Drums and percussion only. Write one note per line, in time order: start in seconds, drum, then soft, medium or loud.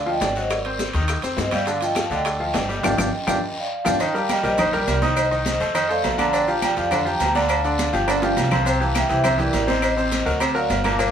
0.06 high bongo soft
0.06 high conga soft
0.21 high bongo medium
0.21 low bongo medium
0.21 high conga medium
0.21 high timbale medium
0.21 low timbale medium
0.21 short guiro medium
0.21 maracas medium
0.35 high bongo soft
0.35 short guiro medium
0.35 maracas soft
0.50 high bongo medium
0.50 high conga soft
0.50 high timbale medium
0.50 long guiro medium
0.50 claves medium
0.50 maracas medium
0.65 high conga soft
0.65 high timbale medium
0.79 high bongo medium
0.79 high conga medium
0.79 low timbale medium
0.79 short guiro medium
0.79 maracas medium
0.93 high bongo soft
0.93 high conga soft
0.93 high timbale medium
0.93 short guiro medium
0.93 maracas soft
1.08 high bongo medium
1.08 high conga soft
1.08 high timbale loud
1.08 long guiro medium
1.08 claves medium
1.08 maracas medium
1.22 high bongo soft
1.22 high conga soft
1.22 high timbale medium
1.22 maracas medium
1.37 high bongo medium
1.37 low bongo medium
1.37 high conga medium
1.37 low timbale medium
1.37 short guiro medium
1.37 maracas medium
1.51 high conga medium
1.51 high timbale medium
1.51 short guiro medium
1.51 claves medium
1.51 maracas soft
1.66 high bongo medium
1.66 high conga soft
1.66 high timbale medium
1.66 long guiro medium
1.66 maracas medium
1.81 high conga soft
1.81 high timbale medium
1.81 maracas medium
1.95 high bongo medium
1.95 high conga medium
1.95 high timbale medium
1.95 low timbale medium
1.95 short guiro medium
1.95 claves medium
1.95 maracas medium
2.10 high bongo soft
2.10 high conga soft
2.10 short guiro medium
2.10 maracas soft
2.25 high bongo medium
2.25 high conga soft
2.25 high timbale loud
2.25 long guiro medium
2.25 claves medium
2.25 maracas medium
2.40 high bongo soft
2.40 high conga soft
2.54 high bongo medium
2.54 low bongo medium
2.54 high conga medium
2.54 high timbale medium
2.54 low timbale medium
2.54 short guiro medium
2.54 maracas medium
2.69 high bongo soft
2.69 short guiro medium
2.69 maracas soft
2.83 low bongo loud
2.83 low conga loud
2.83 high timbale loud
2.83 long guiro medium
2.83 claves loud
2.83 maracas medium
2.98 low bongo loud
2.98 low conga medium
2.98 high timbale medium
2.98 long guiro medium
2.98 claves loud
2.98 maracas loud
3.28 low bongo medium
3.28 low conga medium
3.28 high timbale loud
3.28 long guiro medium
3.28 claves loud
3.28 maracas medium
3.85 low bongo medium
3.85 low conga loud
3.85 high timbale medium
3.85 long guiro medium
3.85 claves medium
3.85 maracas medium
4.00 cowbell loud
4.00 high conga soft
4.00 low agogo medium
4.00 long guiro medium
4.00 maracas medium
4.15 high conga soft
4.15 maracas soft
4.29 cowbell medium
4.29 high conga medium
4.29 low timbale medium
4.29 low agogo medium
4.29 short guiro medium
4.29 claves medium
4.29 maracas medium
4.43 short guiro medium
4.43 maracas soft
4.58 cowbell loud
4.58 high conga soft
4.58 low conga medium
4.58 low agogo loud
4.58 long guiro medium
4.58 claves medium
4.58 maracas medium
4.73 high conga soft
4.73 low conga medium
4.73 maracas soft
4.87 cowbell medium
4.87 high conga medium
4.87 low timbale medium
4.87 low agogo medium
4.87 short guiro medium
4.87 maracas medium
5.02 high conga loud
5.02 low agogo medium
5.02 short guiro medium
5.02 maracas soft
5.16 cowbell loud
5.16 high conga soft
5.16 low agogo loud
5.16 claves medium
5.16 maracas medium
5.32 high conga soft
5.32 maracas soft
5.46 cowbell medium
5.46 high conga loud
5.46 low timbale medium
5.46 low agogo medium
5.46 short guiro medium
5.46 maracas medium
5.60 cowbell medium
5.60 high conga soft
5.60 short guiro medium
5.60 maracas soft
5.75 cowbell loud
5.75 high conga soft
5.75 low agogo loud
5.75 long guiro medium
5.75 claves medium
5.75 maracas medium
5.90 high conga soft
5.90 maracas soft
6.04 cowbell medium
6.04 high conga medium
6.04 low timbale medium
6.04 low agogo medium
6.04 short guiro medium
6.04 maracas medium
6.18 cowbell medium
6.18 high conga loud
6.18 low agogo loud
6.18 short guiro medium
6.18 claves medium
6.18 maracas soft
6.33 cowbell loud
6.33 high conga soft
6.33 low agogo medium
6.33 long guiro medium
6.33 maracas medium
6.47 high conga soft
6.47 maracas soft
6.62 cowbell medium
6.62 high conga medium
6.62 low timbale soft
6.62 low agogo loud
6.62 short guiro medium
6.62 claves medium
6.62 maracas medium
6.76 short guiro medium
6.76 maracas soft
6.91 cowbell loud
6.91 high conga soft
6.91 low conga medium
6.91 low agogo loud
6.91 long guiro medium
6.91 claves medium
6.91 maracas medium
7.06 high conga soft
7.06 maracas soft
7.20 cowbell medium
7.20 high conga medium
7.20 low timbale medium
7.20 low agogo medium
7.20 short guiro medium
7.20 maracas medium
7.35 high conga loud
7.35 low agogo medium
7.35 short guiro medium
7.35 maracas soft
7.49 cowbell loud
7.49 high conga soft
7.49 low agogo loud
7.49 long guiro medium
7.49 claves medium
7.49 maracas medium
7.64 high conga soft
7.64 maracas soft
7.78 cowbell medium
7.78 high conga loud
7.78 low timbale medium
7.78 low agogo medium
7.78 short guiro medium
7.78 maracas medium
7.93 cowbell medium
7.93 high conga soft
7.93 short guiro medium
7.93 maracas soft
8.08 cowbell loud
8.08 high conga soft
8.08 high timbale medium
8.08 low agogo loud
8.08 long guiro medium
8.08 claves medium
8.08 maracas medium
8.22 high conga medium
8.22 high timbale medium
8.22 maracas soft
8.36 cowbell medium
8.36 high conga medium
8.36 low timbale medium
8.36 low agogo medium
8.36 short guiro medium
8.36 maracas medium
8.51 cowbell medium
8.51 low conga loud
8.51 low timbale medium
8.51 low agogo loud
8.51 short guiro medium
8.51 claves medium
8.51 maracas soft
8.65 cowbell loud
8.65 high conga soft
8.65 low agogo medium
8.65 long guiro medium
8.65 maracas medium
8.81 high conga soft
8.81 maracas soft
8.94 cowbell medium
8.94 high conga loud
8.94 low timbale soft
8.94 low agogo medium
8.94 short guiro medium
8.94 claves medium
8.94 maracas medium
9.09 short guiro medium
9.09 maracas soft
9.24 cowbell loud
9.24 high conga soft
9.24 low conga medium
9.24 low agogo loud
9.24 long guiro medium
9.24 claves medium
9.24 maracas medium
9.39 high conga soft
9.39 low conga medium
9.39 maracas soft
9.53 cowbell medium
9.53 high conga medium
9.53 low timbale medium
9.53 low agogo medium
9.53 short guiro medium
9.53 maracas medium
9.68 high conga medium
9.68 low agogo medium
9.68 short guiro medium
9.68 maracas soft
9.82 cowbell loud
9.82 high conga soft
9.82 low agogo loud
9.82 long guiro medium
9.82 claves medium
9.82 maracas medium
9.97 high conga soft
9.97 maracas soft
10.11 cowbell medium
10.11 high conga medium
10.11 low timbale medium
10.11 low agogo medium
10.11 short guiro medium
10.11 maracas medium
10.26 cowbell medium
10.26 high conga soft
10.26 short guiro medium
10.26 maracas soft
10.40 cowbell loud
10.40 high conga soft
10.40 low agogo loud
10.40 long guiro medium
10.40 claves medium
10.40 maracas medium
10.56 high conga soft
10.56 maracas soft
10.70 cowbell medium
10.70 high conga medium
10.70 low timbale medium
10.70 low agogo medium
10.70 short guiro medium
10.70 maracas medium
10.84 cowbell medium
10.84 high conga medium
10.84 low agogo loud
10.84 short guiro medium
10.84 claves medium
10.84 maracas soft
10.99 cowbell loud
10.99 high conga soft
10.99 low agogo medium
10.99 long guiro medium
10.99 maracas medium